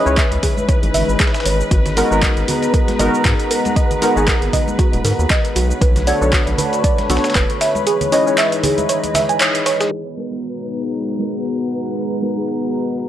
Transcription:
Already playing: E3 G#3 B3 C#4 D#4 E4 B4 C#5 D#5
0.04 C#2 C#4 E4 G#4 B4 C#5 B5, shaker
0.17 E5, kick, snare, clap, closed hi-hat, shaker
0.32 C#2, closed hi-hat
0.43 G#4, kick, closed hi-hat, open hi-hat, low conga, shaker
0.57 high conga, shaker
0.69 C#5, kick, closed hi-hat, shaker
0.83 G#1, closed hi-hat, high conga
0.94 G#1 E5, open hi-hat, low conga, shaker
1.09 G#1, shaker
1.20 G#4, kick, snare, clap, closed hi-hat, shaker
1.27 snare, closed hi-hat
1.34 snare, closed hi-hat, shaker
1.40 snare, closed hi-hat
1.45 G#1 C#5, closed hi-hat, open hi-hat, shaker
1.61 shaker
1.71 G#1 B3 F#4 A#5, kick, closed hi-hat, shaker
1.85 G#4, snare, closed hi-hat, low conga, shaker
1.96 G#3 B3 D#4 F#4 A#4, closed hi-hat, open hi-hat, shaker
2.10 G#1 G#3 B3 D#4 F#4 A#4, shaker
2.22 D#5, kick, snare, clap, closed hi-hat, shaker
2.37 G#1, closed hi-hat
2.48 F#4 F#5, closed hi-hat, open hi-hat, low conga, shaker
2.63 closed hi-hat, shaker
2.74 A#4, kick, closed hi-hat, shaker
2.88 snare, closed hi-hat, high conga
2.99 G#1 G#3 B3 D#4 F#4 A#4 D#5, closed hi-hat, open hi-hat, low conga, shaker
3.14 shaker
3.25 G#2 F#4, kick, snare, clap, closed hi-hat, shaker
3.40 closed hi-hat
3.51 A#4, closed hi-hat, open hi-hat, shaker
3.65 closed hi-hat, high conga, shaker
3.76 D#5, kick, closed hi-hat, shaker
3.91 closed hi-hat, low conga, shaker
4.01 G#3 B3 D#4 F#4 A#4, closed hi-hat, open hi-hat, shaker
4.16 G#1 G#3 B3 D#4 F#4 G#4, shaker
4.28 A#4, kick, snare, clap, closed hi-hat, shaker
4.42 G#1, closed hi-hat
4.53 D#5, kick, closed hi-hat, open hi-hat, low conga, shaker
4.68 high conga, shaker
4.79 F#4, kick, closed hi-hat, shaker
4.93 D#1, closed hi-hat, high conga
5.05 G#2 A#4, open hi-hat, low conga, shaker
5.19 D#2, shaker
5.30 D#5, kick, snare, clap, closed hi-hat, shaker
5.45 closed hi-hat
5.56 B1 D3 A3 D4 F#4 B4 C#5, closed hi-hat, open hi-hat, shaker
5.64 C#5
5.71 shaker
5.81 B1 B4, kick, closed hi-hat, shaker
5.96 snare, closed hi-hat, low conga, shaker
6.07 B3 D4 F#4 A4 C#5 D5 B5, closed hi-hat, open hi-hat, shaker
6.21 B1 B3 D4 F#4 A4 C#5 A5, shaker
6.33 F#4, kick, snare, clap, closed hi-hat, shaker
6.47 B1, closed hi-hat
6.58 B4, closed hi-hat, open hi-hat, low conga, shaker
6.73 closed hi-hat, shaker
6.84 D5, kick, closed hi-hat, shaker
6.98 snare, closed hi-hat, high conga
7.09 B1 B3 D4 F#4 A4 C#5, snare, closed hi-hat, open hi-hat, low conga, shaker
7.17 snare, closed hi-hat
7.24 snare, closed hi-hat, shaker
7.30 snare, closed hi-hat
7.35 F#1 B4, kick, snare, clap, closed hi-hat, shaker
7.50 closed hi-hat
7.61 E3 G#3 D#4 E4 E5, snare, closed hi-hat, open hi-hat, shaker
7.75 high conga, shaker
7.87 G#4, closed hi-hat, shaker
8.00 D#5, closed hi-hat, low conga, shaker
8.12 C#4 E4 G#4 B4 C#5 D#5, closed hi-hat, open hi-hat, shaker
8.26 C#4 E4 G#4 B4 C#5, shaker
8.38 E5, snare, clap, closed hi-hat, shaker
8.52 closed hi-hat, shaker
8.64 G#4, closed hi-hat, open hi-hat, low conga, shaker
8.78 closed hi-hat, high conga, shaker
8.89 C#5, closed hi-hat, shaker
9.04 closed hi-hat, high conga, shaker
9.14 E5, snare, closed hi-hat, open hi-hat, low conga, shaker
9.29 G#5, closed hi-hat, shaker
9.40 C#5, snare, clap, closed hi-hat, shaker
9.55 closed hi-hat
9.66 C#5, snare, closed hi-hat, open hi-hat, shaker
9.80 G#4, snare, closed hi-hat, shaker
9.92 G#3 B3 D#4 F#4 B4 A#5, closed hi-hat, crash
10.06 snare
10.17 G#3 B3 D#4 F#4 A#4, closed hi-hat
10.31 G#3 B3 D#4 F#4 G#4 A#4
10.43 closed hi-hat
10.51 F#5
10.57 closed hi-hat
10.69 closed hi-hat
10.83 closed hi-hat
10.94 closed hi-hat
11.09 snare, closed hi-hat
11.19 G#3 B3 D#4 F#4 A#4, closed hi-hat
11.45 closed hi-hat
11.60 closed hi-hat
11.71 closed hi-hat
11.86 closed hi-hat
11.97 closed hi-hat
12.11 closed hi-hat
12.22 G#3 B3 D#4 F#4 A#4, closed hi-hat
12.36 G#3 B3 D#4 F#4 G#4
12.48 closed hi-hat
12.62 closed hi-hat
12.74 closed hi-hat
12.99 closed hi-hat

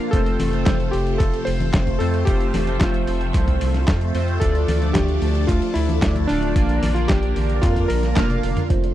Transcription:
Already playing: F3 A#3 F4 A#4
0.00 closed hi-hat
0.11 F1 C3 A3 C4 F4 A4 C5, kick, closed hi-hat
0.26 closed hi-hat
0.40 F1, open hi-hat, high conga
0.53 A3 C4 F4 C5, closed hi-hat
0.66 F1, kick, snare, clap, closed hi-hat, high conga
0.80 closed hi-hat
0.91 F1 G4, open hi-hat
1.07 closed hi-hat
1.18 F1 A4, kick, clap, closed hi-hat
1.33 closed hi-hat
1.45 F1 C5, open hi-hat
1.60 closed hi-hat, high conga
1.74 F1, kick, snare, clap, closed hi-hat
1.87 kick, closed hi-hat
1.99 F2 A3 C4 F4 A4 C5, open hi-hat
2.14 closed hi-hat
2.25 F1 A3 C4 F4 G4 C5 E5, kick, closed hi-hat
2.41 closed hi-hat
2.54 F1, snare, open hi-hat, high conga
2.67 A3 C4 F4 C5, closed hi-hat
2.79 F1 F4, kick, snare, clap, closed hi-hat
2.94 closed hi-hat
3.07 F1, open hi-hat
3.21 closed hi-hat
3.34 C2, kick, clap, closed hi-hat
3.48 kick, closed hi-hat
3.61 C2, open hi-hat
3.74 snare, closed hi-hat
3.88 F2, kick, snare, clap, closed hi-hat
4.01 closed hi-hat
4.15 F2 A3 C4 F4 C5, open hi-hat
4.28 closed hi-hat
4.40 D2 D3 A3 D4 F4 A4 D5, kick, closed hi-hat
4.55 closed hi-hat
4.68 D2, open hi-hat, high conga
4.82 F3 A3 D4 D5, closed hi-hat
4.93 D2 G4, kick, snare, clap, closed hi-hat, high conga
5.08 closed hi-hat
5.22 D2, open hi-hat
5.35 closed hi-hat
5.47 D2 F4, kick, clap, closed hi-hat
5.62 closed hi-hat
5.74 D2 E4, open hi-hat
5.89 closed hi-hat, high conga
6.02 D2, kick, snare, clap, closed hi-hat
6.16 kick, closed hi-hat
6.27 D1 A3 D4 F4 D5, open hi-hat
6.42 closed hi-hat
6.56 A#1 A#3 D4 F4 A#4 D5, kick, closed hi-hat
6.69 closed hi-hat
6.82 A#1, snare, open hi-hat, high conga
6.94 A#3 D4 F4 D5, closed hi-hat
7.08 A#1 G4, kick, snare, clap, closed hi-hat, high conga
7.23 closed hi-hat
7.36 A#1, open hi-hat, high conga
7.50 closed hi-hat
7.62 F2 F4, kick, clap, closed hi-hat
7.76 kick, closed hi-hat
7.88 A#1 A#4, open hi-hat
8.03 snare, closed hi-hat
8.16 F1 A#3 D4 F4 F5, kick, snare, clap, closed hi-hat, high tom
8.30 closed hi-hat, high tom
8.43 F1, open hi-hat
8.57 closed hi-hat, mid tom
8.70 F1 D3 A3 C4 D4 F4 A4 C5, kick, closed hi-hat
8.84 closed hi-hat

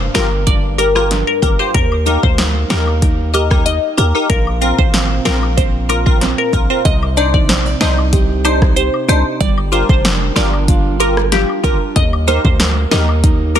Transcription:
Already playing: G2 A#3 D4 D5
0.14 G1 A#3 F4 G4 A#4, snare, closed hi-hat
0.47 D4 D5, kick, closed hi-hat
0.78 G4 A#4, closed hi-hat
0.95 F4 G4 A#4, cross-stick
1.11 D4, snare, closed hi-hat
1.27 A#4
1.42 G1 A#3 G4 A#4, kick, closed hi-hat
1.59 F4 G4 C5
1.74 D#2 A#4, kick, closed hi-hat
1.92 high woodblock
2.06 A#3 D#4 G4 A#4, closed hi-hat, cabasa
2.23 D2 C5, kick
2.38 D#4, snare, closed hi-hat
2.70 D#2 A#3 D#4 G4 A#4, snare, closed hi-hat, cabasa
2.87 high woodblock
3.02 D#4, kick, closed hi-hat
3.34 G4 A#4 D#5, closed hi-hat, cabasa, high woodblock
3.51 D#4 G4 A#4, kick, cross-stick
3.66 D#4 D#5, closed hi-hat
3.97 D#2 A#3 G4 A#4, closed hi-hat, cabasa
4.15 D#4 G4 A#4
4.30 A#1 A#2 A#4, kick, closed hi-hat
4.47 high woodblock
4.61 A#3 C4 F4 A#4, closed hi-hat, cabasa
4.79 G#1 C5, kick
4.94 C4, snare, closed hi-hat
5.25 A#1 C4 F4 A#4, snare, closed hi-hat, cabasa
5.43 high woodblock
5.57 C4 C5, kick, closed hi-hat
5.89 F4 A#4, closed hi-hat, cabasa, high woodblock
6.06 C4 F4 A#4, kick
6.21 C4, snare, closed hi-hat
6.38 A#4
6.53 A#1 A#3 F4 A#4, kick, closed hi-hat, cabasa
6.70 C4 F4 A#4 C5
6.85 C2 C3 D#5, kick, closed hi-hat
7.03 high woodblock
7.17 D4 D#4 C5 D5, closed hi-hat, cabasa
7.34 A#1 D5, kick
7.49 C5, snare, closed hi-hat
7.66 D5
7.81 C2 D4 D#4 C5 D#5, snare, closed hi-hat, cabasa
7.98 high woodblock
8.13 G4, kick, closed hi-hat
8.45 D4 D#4 C5, closed hi-hat, cabasa, high woodblock
8.62 kick, cross-stick
8.76 G4 C5, closed hi-hat
8.94 high woodblock
9.08 C2 D4 D#4 C5, closed hi-hat, cabasa
9.40 G1 G3 D5, kick, closed hi-hat
9.58 high woodblock
9.72 D4 F4 G4 A#4 C5, closed hi-hat, cabasa
9.89 F1 C5, kick
10.04 A#4, snare, closed hi-hat
10.36 G1 D4 F4 G4 A#4 D5, snare, closed hi-hat, cabasa
10.53 high woodblock
10.68 F4, kick, closed hi-hat
11.00 F4 G4 A#4, closed hi-hat, cabasa, high woodblock
11.17 cross-stick
11.32 F4 G4, snare, closed hi-hat
11.49 high woodblock
11.63 G1 D4 F4 G4 A#4, kick, closed hi-hat, cabasa
11.96 D#2 D#5, kick, closed hi-hat
12.13 high woodblock
12.27 A#3 D#4 G4 A#4 C5, closed hi-hat, cabasa
12.45 D2 C5, kick
12.60 A#4, snare, closed hi-hat
12.91 D#2 A#3 D#4 G4 A#4 D#5, snare, closed hi-hat, cabasa
13.09 high woodblock
13.23 D#4, kick, closed hi-hat
13.55 A#3 D#4 G4 A#4, closed hi-hat, cabasa, high woodblock

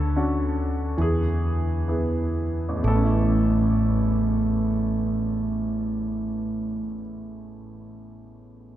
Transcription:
Already playing: D2 D3 A4
0.16 C#4 D4 F#4
0.97 E2 E3 G#4
1.88 B3 E4 G#4
2.69 A1
2.76 E2
2.83 A1 A3
2.88 B3 A4
2.96 C#4
3.03 E4

